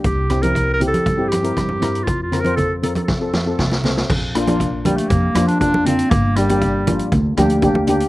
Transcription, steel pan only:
X:1
M:4/4
L:1/16
Q:1/4=119
K:Bb
V:1 name="Steel pan"
z2 [C=EG] [CEB]2 z [CEG]2 z [CEG] z [CEB]2 z [CEB]2 | z2 [CFB] [CFc]2 z [CFB]2 z [CFA] z [CFA]2 z [CFA]2 | z2 [B,DF] [B,DF]2 z [B,DG]2 z2 [B,DF] z [B,DF] z [B,DF]2 | z2 [B,DG] [B,DG]2 z [B,DF]2 z2 [B,DG] z [B,DG] z [B,DG]2 |]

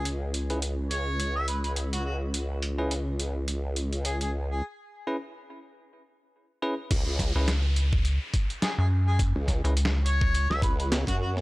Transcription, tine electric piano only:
X:1
M:4/4
L:1/16
Q:"Swing 16ths" 1/4=105
K:C#m
V:1 name="Tine electric piano"
z3 [CEGB] z12 | z3 [CEGB] z12 | z3 [CEGB] z8 z2 [CEGB] z | z3 [CEGB] z12 |
z3 [CEGB] z12 |]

